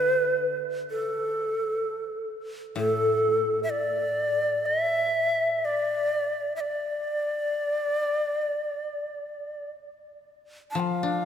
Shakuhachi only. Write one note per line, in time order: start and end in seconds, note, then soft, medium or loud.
0.00 0.61 B4 medium
0.91 2.27 A4 medium
2.77 3.61 A4 medium
3.63 3.72 E5 medium
3.70 4.67 D5 medium
4.66 5.66 E5 medium
5.65 6.56 D5 medium
6.56 6.62 E5 soft
6.60 9.71 D5 medium
10.71 10.81 A5 soft
10.80 11.25 F5 medium